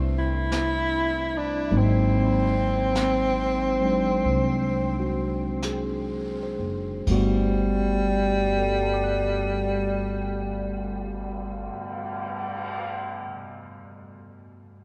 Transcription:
Already playing: upright bass C2, tine electric piano G3 A3 C4 D4 E4 B4
0.19 tenor saxophone E4
0.52 brush sweep, snare, hi-hat pedal
1.38 tenor saxophone D4
1.71 upright bass G#1, tine electric piano F#3 G#3 A#3 C4 D#4, brush sweep
1.77 tenor saxophone C4
2.95 brush sweep, snare, hi-hat pedal
3.81 tine electric piano F#3 G#3 D4
4.25 upright bass C2, brush sweep
5.00 tine electric piano F#4
5.62 tine electric piano G#4, brush sweep, snare, hi-hat pedal
6.43 tine electric piano C5
6.59 upright bass F#1
7.07 upright bass G1, tine electric piano G2 G3 A3, kick, crash
7.11 tenor saxophone G3, tine electric piano B3 F#4
8.58 tine electric piano A4
8.66 tine electric piano D5
8.74 tine electric piano F#5
8.83 tine electric piano A5
8.94 tine electric piano D6
9.04 tine electric piano F#6

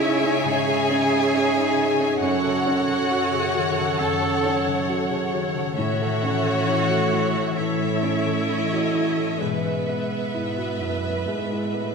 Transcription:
Already playing: grand piano C#2 C#4 D#4, harp C#3 G#3 C#4 G#4, cello section C#3, cello E4, viola section G#4 C#5, violin section E5 G#5
0.00 harp A3, grand piano G#4
0.23 harp G#3, grand piano C#4
0.44 grand piano G#2, harp C#3, cello G#4, violin section G#5
0.68 harp C#4, grand piano G#4
0.89 grand piano C#4, harp G#4
1.11 harp G#3, grand piano G#4
1.33 harp C#4, grand piano C#4
1.56 harp G#3, grand piano D#4
1.78 harp A3, grand piano G#4
2.00 harp G#3, grand piano C#4
2.21 cello section F#2, grand piano F#2, harp F#2, cello F#4, viola section A4 C#5, violin section C#5 F#5
2.44 harp C#3, grand piano A4
2.66 grand piano C#4, harp F#4
2.89 harp C#3, grand piano A4
3.11 harp C#4, grand piano F#4
3.33 harp C#3, grand piano G#4
3.55 harp D#3, grand piano F#4
3.77 harp C#3, grand piano A4
3.99 harp F#2, grand piano C#3, cello A4, violin section A5
4.22 harp C#4, grand piano A4
4.45 grand piano C#4, harp F#4
4.66 harp C#3, grand piano A4
4.89 harp C#4, grand piano F#4
5.11 harp C#3, grand piano G#4
5.33 harp D#3, grand piano F#4
5.56 harp C#3, grand piano A4
5.77 cello section A2, grand piano A2, harp A2, cello F#4, viola section A4 C#5, violin section C#5 E5 F#5
6.01 harp E3, grand piano A4
6.23 grand piano C#4, harp E4
6.46 harp E3, grand piano A4
6.67 harp C#4, grand piano E4
6.90 harp E3, grand piano F#4
7.12 harp F#3, grand piano E4
7.35 harp E3, grand piano A4
7.57 harp A2, grand piano E3, cello E4, viola section A4 C#5, violin section C#5 E5
7.81 harp C#4, grand piano A4
8.03 grand piano C#4, harp E4
8.26 harp E3, grand piano A4
8.48 harp C#4, grand piano E4, violin section D#5
8.72 harp E3, grand piano F#4
8.94 harp F#3, grand piano E4
9.17 harp E3, grand piano A4
9.40 cello section G#2, harp B2, grand piano G#3, cello B3, viola section B4, violin section B4 E5
9.64 harp G#3, grand piano B4
9.88 grand piano B3, harp E4
10.12 harp G#3
10.34 cello section G#2, harp B3, grand piano E4
10.58 harp G#3, grand piano F#4
10.80 cello section F#2, harp A3, grand piano E4
11.04 harp G#3, grand piano B4
11.27 cello section G#2, grand piano G#3
11.51 harp B3, grand piano E4
11.74 cello section A2, grand piano B3, harp E4

